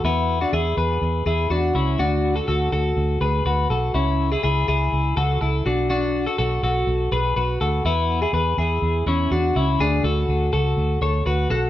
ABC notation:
X:1
M:4/4
L:1/16
Q:1/4=123
K:Dlyd
V:1 name="Clean electric guitar"
[B,E]3 [DF] [EG]2 [GB]4 [EG]2 [DF]2 [CE]2 | [DF]3 [FA] [FA]2 [FA]4 [GB]2 [FB]2 [FA]2 | [CE]3 [EG] [EG]2 [EG]4 [FA]2 [EA]2 [DF]2 | [DF]3 [FA] [FA]2 [FA]4 [GB]2 [FB]2 [FA]2 |
[B,E]3 [EG] [GB]2 [EG]4 [CE]2 [DF]2 [CE]2 | [DG]2 [FA]4 [FA]4 [Ac]2 [FB]2 [FA]2 |]
V:2 name="Fingered electric bass" clef=bass
E,,4 E,,2 E,,2 E,,2 E,,2 E,,2 C,,2 | D,,4 D,,2 D,,2 D,,2 D,,2 D,,2 B,,,2 | C,,4 C,,2 C,,2 C,,2 C,,2 C,,2 B,,,2- | B,,,4 B,,,2 B,,,2 B,,,2 B,,,2 B,,,2 D,,2 |
E,,4 E,,2 E,,2 E,,2 E,,2 E,,2 C,,2 | D,,2 D,,2 D,,2 C,,2 D,,2 D,,2 D,,2 B,,,2 |]